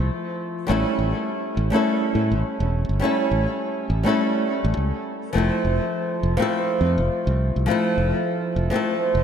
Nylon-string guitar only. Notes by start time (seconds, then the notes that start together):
Already playing: F3 A3 C4 E4 A4
0.67 G3 A3 C#4 E4
0.72 A4
1.70 G3 A3 C#4
1.74 E4 A4
3.00 G3 A3 C#4
3.04 E4 A4
4.03 G3 A3 C#4 E4
4.09 A4
5.33 F3 A3 C4
5.37 E4 A4
6.37 F3 A3 C4 E4
6.42 A4
7.66 F3 A3 C4
7.70 E4 A4
8.70 F3 A3 C4 E4
8.76 A4